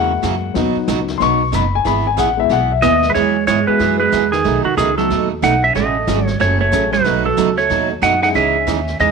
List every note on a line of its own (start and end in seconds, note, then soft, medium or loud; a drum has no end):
0.00 0.22 E2 medium
0.00 0.11 C#3 medium
0.00 0.11 E3 medium
0.00 0.51 G#3 medium
0.00 0.11 A#3 medium
0.00 0.52 A#3 medium
0.00 0.11 C#4 medium
0.00 0.52 E4 medium
0.00 0.12 F#4 medium
0.00 0.86 F#5 loud
0.23 0.54 F#2 medium
0.23 0.34 C#3 medium
0.23 0.34 E3 medium
0.23 0.34 A#3 medium
0.23 0.34 C#4 medium
0.23 0.34 F#4 medium
0.23 snare medium
0.23 hi-hat pedal medium
0.54 0.74 D#2 medium
0.54 0.76 B2 medium
0.54 1.18 F#3 medium
0.54 0.76 F#3 medium
0.54 1.19 B3 medium
0.54 0.76 B3 medium
0.54 1.19 D#4 medium
0.54 0.77 D#4 medium
0.54 0.77 F#4 medium
0.54 brush sweep medium
0.54 snare medium
0.75 muted upright bass stroke soft
0.88 1.19 C#2 medium
0.88 0.99 B2 medium
0.88 0.99 F#3 medium
0.88 0.99 B3 medium
0.88 0.99 D#4 medium
0.88 0.99 F#4 medium
0.88 snare medium
0.88 hi-hat pedal medium
1.08 snare soft
1.18 1.52 B1 medium
1.18 1.41 B2 medium
1.18 1.38 F#3 medium
1.18 1.41 F#3 medium
1.18 1.38 B3 soft
1.18 1.41 B3 medium
1.18 1.39 D#4 medium
1.18 1.41 D#4 medium
1.18 1.41 F#4 medium
1.18 1.20 C6 medium
1.18 brush sweep medium
1.18 snare soft
1.22 1.53 C#6 loud
1.52 1.84 F#1 medium
1.52 1.63 B2 medium
1.52 1.64 F#3 medium
1.52 1.64 B3 medium
1.52 1.64 D#4 medium
1.52 1.64 F#4 medium
1.52 1.73 B5 medium
1.52 snare medium
1.52 hi-hat pedal medium
1.75 1.86 G#5 loud
1.85 2.17 G#1 medium
1.85 2.06 E3 medium
1.85 2.06 B3 medium
1.85 2.06 E4 medium
1.85 2.06 G#4 medium
1.85 2.06 B5 loud
1.85 brush sweep medium
1.85 snare medium
2.07 2.18 G#5 medium
2.17 2.49 A1 loud
2.17 2.28 E3 medium
2.17 2.29 B3 medium
2.17 2.29 E4 medium
2.17 2.29 G#4 medium
2.17 2.38 F#5 medium
2.17 snare medium
2.17 hi-hat pedal medium
2.37 2.57 G#3 medium
2.37 2.57 B3 medium
2.37 2.57 E4 medium
2.37 2.51 E5 loud
2.49 2.81 B1 medium
2.49 2.70 E3 medium
2.49 2.70 B3 medium
2.49 2.71 E4 medium
2.49 2.71 G#4 medium
2.49 2.71 F#5 loud
2.49 brush sweep medium
2.49 snare soft
2.72 2.83 E5 medium
2.82 3.14 D#2 medium
2.82 2.93 E3 medium
2.82 2.93 B3 medium
2.82 3.08 B3 medium
2.82 2.94 E4 medium
2.82 2.94 G#4 medium
2.82 3.10 D#5 loud
2.82 3.15 E5 loud
2.82 snare medium
2.82 hi-hat pedal medium
3.02 snare soft
3.09 3.14 G#3 medium
3.09 3.14 B4 medium
3.14 3.46 E2 medium
3.14 3.35 E3 medium
3.14 3.36 F#3 medium
3.14 3.45 G#3 medium
3.14 3.36 B3 medium
3.14 3.36 E4 medium
3.14 3.36 G#4 medium
3.14 3.46 C#5 medium
3.14 brush sweep soft
3.14 snare soft
3.47 3.66 G#2 medium
3.47 3.58 E3 medium
3.47 3.58 F#3 medium
3.47 3.66 G#3 medium
3.47 3.59 B3 medium
3.47 3.59 E4 medium
3.47 3.59 G#4 medium
3.47 3.68 C#5 medium
3.47 snare medium
3.47 hi-hat pedal medium
3.67 4.10 G#3 medium
3.67 3.98 G#3 medium
3.67 4.10 B3 medium
3.67 4.10 E4 medium
3.67 4.10 F#4 medium
3.67 4.10 G#4 medium
3.67 3.98 B4 loud
3.67 muted upright bass stroke soft
3.79 4.11 F#2 medium
3.79 4.00 E3 medium
3.79 4.00 F#3 medium
3.79 4.01 B3 medium
3.79 4.01 E4 medium
3.79 4.01 G#4 medium
3.79 brush sweep soft
3.79 snare soft
4.00 4.30 G#3 medium
4.00 4.33 B4 medium
4.12 4.44 E2 medium
4.12 4.23 E3 medium
4.12 4.23 F#3 medium
4.12 4.24 B3 medium
4.12 4.24 E4 medium
4.12 4.24 G#4 medium
4.12 snare medium
4.12 hi-hat pedal medium
4.32 4.63 D#3 medium
4.32 4.65 G#4 medium
4.32 snare soft
4.44 4.64 B1 medium
4.44 4.65 B2 medium
4.44 4.65 F#3 medium
4.44 4.65 A3 medium
4.44 4.66 D#4 medium
4.44 4.66 F#4 medium
4.44 brush sweep soft
4.44 snare soft
4.64 4.76 D#3 medium
4.64 4.77 F#4 medium
4.77 5.09 C#2 medium
4.77 4.88 B2 medium
4.77 4.96 D#3 medium
4.77 4.89 F#3 medium
4.77 4.89 A3 medium
4.77 4.89 D#4 medium
4.77 4.89 F#4 medium
4.77 4.97 G#4 medium
4.77 snare medium
4.77 hi-hat pedal medium
4.97 5.28 F#3 medium
4.97 5.09 A3 medium
4.97 5.09 B3 medium
4.97 5.09 D#4 medium
4.97 5.09 F#4 medium
4.97 5.28 A4 loud
4.97 5.09 A4 medium
4.97 snare soft
5.10 5.42 D#2 medium
5.10 5.31 B2 medium
5.10 5.31 F#3 medium
5.10 5.31 A3 medium
5.10 5.31 D#4 medium
5.10 5.31 F#4 medium
5.10 brush sweep medium
5.10 snare soft
5.42 5.74 B1 medium
5.42 5.53 B2 medium
5.42 5.54 F#3 medium
5.42 5.54 A3 medium
5.42 5.54 D#4 medium
5.42 5.64 D#4 medium
5.42 5.54 F#4 medium
5.42 5.64 F#5 medium
5.42 snare medium
5.42 hi-hat pedal medium
5.64 5.75 C#4 medium
5.64 5.75 E5 loud
5.75 6.07 A1 medium
5.75 5.95 C#3 medium
5.75 5.96 F#3 medium
5.75 6.21 A3 medium
5.75 5.96 A3 medium
5.75 5.96 C#4 medium
5.75 5.96 F#4 medium
5.75 6.26 D#5 loud
5.75 brush sweep soft
5.75 snare soft
6.07 6.39 G#1 medium
6.07 6.18 C#3 medium
6.07 6.19 F#3 medium
6.07 6.26 F#3 medium
6.07 6.19 A3 medium
6.07 6.26 A3 medium
6.07 6.26 C#4 medium
6.07 6.19 C#4 medium
6.07 6.19 F#4 medium
6.07 6.26 F#4 medium
6.07 6.26 A4 medium
6.07 snare medium
6.07 hi-hat pedal medium
6.21 6.36 G3 medium
6.26 6.41 C#5 loud
6.26 snare soft
6.39 6.72 F#1 medium
6.39 6.60 C#3 medium
6.39 6.60 F#3 medium
6.39 6.59 A3 medium
6.39 6.61 A3 medium
6.39 6.61 C#4 medium
6.39 6.61 F#4 medium
6.39 6.60 C#5 loud
6.39 brush sweep medium
6.39 snare soft
6.61 6.91 A3 medium
6.61 6.93 C#5 loud
6.72 7.04 A1 medium
6.72 6.83 C#3 medium
6.72 6.83 F#3 medium
6.72 6.90 F#3 medium
6.72 6.90 A3 medium
6.72 6.83 A3 medium
6.72 6.84 C#4 medium
6.72 6.91 C#4 medium
6.72 6.84 F#4 medium
6.72 6.91 F#4 medium
6.72 6.91 G#4 medium
6.72 snare medium
6.72 hi-hat pedal medium
6.92 7.23 F#3 medium
6.92 7.23 B4 loud
6.92 snare soft
7.04 7.36 B1 medium
7.04 7.25 B2 medium
7.04 7.25 F#3 medium
7.04 7.26 A3 medium
7.04 7.26 D#4 medium
7.04 7.26 F#4 medium
7.04 brush sweep medium
7.04 snare soft
7.25 7.55 F#3 medium
7.25 7.59 A4 loud
7.37 7.69 C#2 medium
7.37 7.48 B2 medium
7.37 7.48 F#3 medium
7.37 7.49 A3 medium
7.37 7.49 D#4 medium
7.37 7.49 F#4 medium
7.37 snare medium
7.37 hi-hat pedal medium
7.57 7.88 A3 medium
7.57 7.88 C#5 loud
7.57 snare soft
7.69 8.01 D#2 medium
7.69 7.90 B2 medium
7.69 7.90 F#3 medium
7.69 7.91 A3 medium
7.69 7.91 D#4 medium
7.69 7.91 F#4 medium
7.69 brush sweep medium
7.69 snare soft
8.02 8.34 F#2 medium
8.02 8.13 B2 medium
8.02 8.13 F#3 medium
8.02 8.13 A3 medium
8.02 8.13 D#4 medium
8.02 8.21 D#4 medium
8.02 8.14 F#4 medium
8.02 8.22 F#5 medium
8.02 snare medium
8.02 hi-hat pedal medium
8.22 8.65 G#3 medium
8.22 8.65 C#4 medium
8.22 8.28 D#4 medium
8.22 8.65 D#4 medium
8.22 8.65 E4 medium
8.22 8.65 G#4 medium
8.22 8.28 F#5 loud
8.22 snare soft
8.34 8.66 C#2 medium
8.34 8.55 C#3 medium
8.34 8.55 E3 medium
8.34 8.96 C#4 medium
8.34 8.56 D#4 medium
8.34 8.56 G#4 medium
8.34 9.00 E5 medium
8.34 brush sweep medium
8.34 snare soft
8.67 8.99 D#2 medium
8.67 8.78 C#3 medium
8.67 8.78 E3 medium
8.67 8.78 D#4 medium
8.67 8.79 G#4 medium
8.67 snare medium
8.67 hi-hat pedal medium
8.87 snare soft
8.99 9.11 E2 medium
8.99 9.11 C#3 medium
8.99 9.11 E3 medium
8.99 9.11 G#3 medium
8.99 9.11 D#4 medium
8.99 9.11 G#4 medium
8.99 9.11 D#5 medium
8.99 brush sweep soft
8.99 snare soft